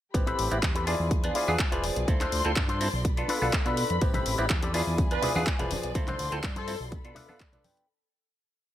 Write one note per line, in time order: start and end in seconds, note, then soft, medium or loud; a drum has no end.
0.14 0.33 A1 loud
0.14 0.48 B3 loud
0.14 0.48 C4 medium
0.14 0.48 E4 medium
0.14 0.86 G4 medium
0.14 0.48 G4 loud
0.14 0.86 B5 medium
0.14 kick loud
0.14 closed hi-hat medium
0.26 0.51 C4 loud
0.26 0.51 G4 loud
0.26 0.51 A4 loud
0.26 0.52 B4 loud
0.26 closed hi-hat medium
0.39 0.48 A1 loud
0.39 open hi-hat loud
0.51 0.60 A1 loud
0.51 0.58 B3 medium
0.51 0.58 C4 medium
0.51 0.58 E4 medium
0.51 0.59 G4 medium
0.51 closed hi-hat soft
0.63 0.95 E2 medium
0.63 kick loud
0.63 clap loud
0.63 closed hi-hat medium
0.75 0.87 C4 medium
0.75 0.87 G4 medium
0.75 0.87 A4 medium
0.75 0.87 B4 loud
0.75 closed hi-hat medium
0.87 3.03 F3 medium
0.87 0.94 B3 medium
0.87 0.95 D4 medium
0.87 1.26 E4 medium
0.87 1.26 F4 medium
0.87 0.95 F4 medium
0.87 0.95 G#4 medium
0.87 1.26 G#4 medium
0.87 3.99 D5 medium
0.87 1.27 D5 loud
0.87 2.07 G#5 medium
0.87 open hi-hat medium
1.00 1.31 E2 medium
1.11 kick loud
1.11 closed hi-hat medium
1.24 1.45 B3 medium
1.24 1.45 D4 medium
1.24 1.45 F4 medium
1.24 1.45 G#4 loud
1.24 closed hi-hat medium
1.35 1.54 E4 loud
1.35 1.54 F4 loud
1.35 1.54 G#4 loud
1.35 1.54 D5 loud
1.35 open hi-hat loud
1.48 1.57 E2 loud
1.48 1.59 B3 medium
1.48 1.59 D4 medium
1.48 1.59 F4 medium
1.48 1.59 G#4 loud
1.59 kick loud
1.59 clap loud
1.59 closed hi-hat medium
1.72 1.90 E1 loud
1.72 2.05 F3 medium
1.72 2.05 B3 medium
1.72 2.05 D4 medium
1.72 1.83 E4 medium
1.72 1.84 F4 medium
1.72 1.84 G#4 medium
1.72 2.06 G#4 loud
1.72 1.84 D5 medium
1.72 closed hi-hat medium
1.84 open hi-hat medium
1.96 2.05 B1 medium
1.96 muted clean electric guitar stroke soft
1.96 closed hi-hat soft
2.08 2.26 D2 loud
2.08 2.42 C4 loud
2.08 2.42 E4 medium
2.08 2.42 F4 medium
2.08 2.42 A4 loud
2.08 3.04 C6 medium
2.08 kick loud
2.08 closed hi-hat medium
2.20 2.45 D4 loud
2.20 2.45 F4 loud
2.20 2.45 A4 medium
2.20 2.45 C5 loud
2.20 clap soft
2.20 closed hi-hat medium
2.32 2.42 D2 loud
2.32 open hi-hat loud
2.45 2.54 D2 medium
2.45 2.52 C4 medium
2.45 2.52 E4 medium
2.45 2.52 F4 medium
2.45 2.52 A4 medium
2.45 closed hi-hat soft
2.56 2.88 G2 medium
2.56 kick loud
2.56 clap loud
2.56 closed hi-hat medium
2.68 2.87 D4 medium
2.68 2.87 F4 medium
2.68 2.87 A4 medium
2.68 2.87 C5 loud
2.68 closed hi-hat medium
2.80 2.88 C4 medium
2.80 2.88 E4 medium
2.80 2.88 F4 medium
2.80 2.88 A4 medium
2.80 open hi-hat loud
2.93 3.24 B1 medium
3.04 4.01 A4 medium
3.04 4.73 B5 medium
3.04 muted clean electric guitar stroke soft
3.04 kick loud
3.04 closed hi-hat medium
3.17 3.39 B3 medium
3.17 3.39 D4 medium
3.17 3.39 F4 medium
3.17 3.39 A4 loud
3.17 closed hi-hat medium
3.29 3.47 D4 loud
3.29 3.48 F4 loud
3.29 3.48 A4 loud
3.29 3.48 B4 loud
3.29 open hi-hat loud
3.42 3.50 B1 medium
3.42 3.52 B3 medium
3.42 3.53 D4 medium
3.42 3.53 F4 medium
3.42 3.53 A4 loud
3.53 kick loud
3.53 clap loud
3.53 closed hi-hat medium
3.65 3.84 B2 medium
3.65 3.99 B3 medium
3.65 3.77 D4 medium
3.65 3.99 D4 medium
3.65 3.77 F4 medium
3.65 3.99 F4 medium
3.65 3.78 A4 medium
3.65 3.99 A4 loud
3.65 3.78 B4 medium
3.65 closed hi-hat medium
3.77 open hi-hat loud
3.90 3.99 F2 medium
3.90 muted clean electric guitar stroke soft
3.90 closed hi-hat soft
4.01 4.20 A1 loud
4.01 4.35 B3 loud
4.01 4.36 C4 medium
4.01 4.36 E4 medium
4.01 4.74 G4 medium
4.01 4.36 G4 loud
4.01 kick loud
4.01 closed hi-hat medium
4.01 tambourine medium
4.14 4.38 C4 loud
4.14 4.38 G4 loud
4.14 4.39 A4 loud
4.14 4.39 B4 loud
4.14 closed hi-hat medium
4.14 tambourine soft
4.14 high conga loud
4.14 low conga medium
4.26 4.36 A1 loud
4.26 open hi-hat loud
4.26 tambourine medium
4.38 4.47 A1 loud
4.38 4.45 B3 medium
4.38 4.45 C4 medium
4.38 4.45 E4 medium
4.38 4.45 G4 medium
4.38 closed hi-hat soft
4.38 tambourine soft
4.50 4.82 E2 medium
4.50 kick loud
4.50 clap loud
4.50 closed hi-hat medium
4.62 4.74 C4 medium
4.62 4.74 G4 medium
4.62 4.75 A4 medium
4.62 4.73 D5 medium
4.62 closed hi-hat medium
4.62 high conga medium
4.74 6.90 F3 medium
4.74 4.81 B3 medium
4.74 4.82 D4 medium
4.74 5.13 E4 medium
4.74 5.13 F4 medium
4.74 4.82 F4 medium
4.74 5.14 G#4 medium
4.74 4.82 G#4 medium
4.74 6.90 D5 medium
4.74 5.14 D5 medium
4.74 5.94 G#5 medium
4.74 open hi-hat loud
4.74 tambourine medium
4.87 5.18 E2 medium
4.87 tambourine soft
4.98 kick loud
4.98 closed hi-hat medium
4.98 tambourine medium
4.98 high conga loud
5.11 5.32 B3 medium
5.11 5.32 D4 medium
5.11 5.32 F4 medium
5.11 5.33 G#4 loud
5.11 5.28 B4 medium
5.11 closed hi-hat medium
5.22 5.41 E4 loud
5.22 5.41 F4 loud
5.22 5.41 G#4 loud
5.22 5.41 D5 loud
5.22 open hi-hat loud
5.22 tambourine loud
5.22 low conga medium
5.35 5.44 E2 loud
5.35 5.46 B3 medium
5.35 5.46 D4 medium
5.35 5.46 F4 medium
5.35 5.47 G#4 loud
5.35 tambourine soft
5.35 high conga medium
5.47 kick loud
5.47 clap loud
5.47 closed hi-hat medium
5.47 tambourine medium
5.59 5.77 E1 medium
5.59 5.92 F3 medium
5.59 5.92 B3 medium
5.59 5.92 D4 medium
5.59 5.71 E4 medium
5.59 5.71 F4 medium
5.59 5.71 G#4 medium
5.59 5.93 G#4 loud
5.59 5.71 D5 medium
5.59 closed hi-hat medium
5.59 tambourine soft
5.59 low conga medium
5.71 open hi-hat loud
5.71 tambourine medium
5.71 high conga medium
5.83 5.92 B1 medium
5.83 muted clean electric guitar stroke soft
5.83 closed hi-hat soft
5.83 tambourine soft
5.95 6.14 D2 loud
5.95 6.29 C4 loud
5.95 6.29 E4 medium
5.95 6.29 F4 medium
5.95 6.29 A4 loud
5.95 6.91 C6 medium
5.95 kick loud
5.95 closed hi-hat medium
5.95 tambourine medium
6.07 6.32 D4 loud
6.07 6.32 F4 loud
6.07 6.32 A4 medium
6.07 6.32 C5 loud
6.07 clap soft
6.07 closed hi-hat medium
6.07 tambourine soft
6.07 high conga medium
6.07 low conga medium
6.19 6.29 D2 loud
6.19 open hi-hat loud
6.19 tambourine medium
6.32 6.41 D2 loud
6.32 6.39 C4 medium
6.32 6.39 E4 medium
6.32 6.39 F4 medium
6.32 6.39 A4 medium
6.32 closed hi-hat soft
6.32 tambourine soft
6.43 6.75 G2 medium
6.43 kick loud
6.43 clap loud
6.43 closed hi-hat medium
6.56 6.74 D4 medium
6.56 6.74 F4 medium
6.56 6.78 A4 loud
6.56 6.74 A4 medium
6.56 6.74 C5 loud
6.56 closed hi-hat medium
6.56 high conga medium
6.67 6.75 C4 medium
6.67 6.75 E4 medium
6.67 6.75 F4 medium
6.67 6.75 A4 loud
6.67 open hi-hat loud
6.67 tambourine medium
6.80 7.04 B1 medium
6.80 tambourine soft
6.91 7.88 A4 medium
6.91 7.88 D5 medium
6.91 7.88 B5 medium
6.91 muted clean electric guitar stroke soft
6.91 kick loud
6.91 closed hi-hat medium
6.91 tambourine medium
6.91 high conga loud
7.04 7.13 B2 loud
7.04 7.26 B3 medium
7.04 7.26 D4 medium
7.04 7.26 F4 medium
7.04 7.26 A4 loud
7.04 closed hi-hat medium
7.15 7.34 D4 loud
7.15 7.34 F4 loud
7.15 7.34 A4 loud
7.15 7.35 B4 loud
7.15 7.38 E5 medium
7.15 open hi-hat loud
7.15 tambourine medium
7.15 low conga medium
7.28 7.40 B3 medium
7.28 7.40 D4 medium
7.28 7.40 F4 medium
7.28 7.40 A4 loud
7.28 tambourine soft
7.28 high conga medium
7.40 7.53 D5 medium
7.40 kick loud
7.40 clap loud
7.40 closed hi-hat medium
7.52 7.86 B3 medium
7.52 7.64 D4 medium
7.52 7.86 D4 medium
7.52 7.64 F4 medium
7.52 7.86 F4 medium
7.52 7.65 A4 medium
7.52 7.86 A4 loud
7.52 7.65 B4 medium
7.52 closed hi-hat medium
7.52 tambourine soft
7.52 low conga medium
7.64 7.87 G5 medium
7.64 open hi-hat loud
7.64 tambourine loud
7.64 high conga loud
7.76 muted clean electric guitar stroke soft
7.76 closed hi-hat soft
7.76 tambourine soft